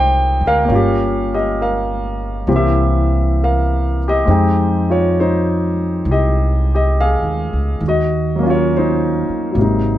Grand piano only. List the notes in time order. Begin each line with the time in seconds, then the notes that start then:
Already playing: C3 G#3 D#4 G4 C5 D#5 G5
0.47 A#4 F5
0.65 A#3 C#4
0.72 F4 G4
1.34 G4 D#5
1.61 A#4 F5
2.48 E3 A#3 C4 G4
2.56 G4 E5
3.43 A#4 F5
4.08 G4 D#5
4.25 G#3 C4
4.29 D#4 G5
4.90 F4 C#5
5.20 D#4 C5
6.11 G4 D#5
6.75 G4 D#5
7.01 G#4 F5
7.88 F#4 D#5
8.36 F#3 A#3
8.43 C#4 F4
8.50 F4 C#5
8.77 D#4 C5
9.51 F#3 A#3
9.59 C3 D#4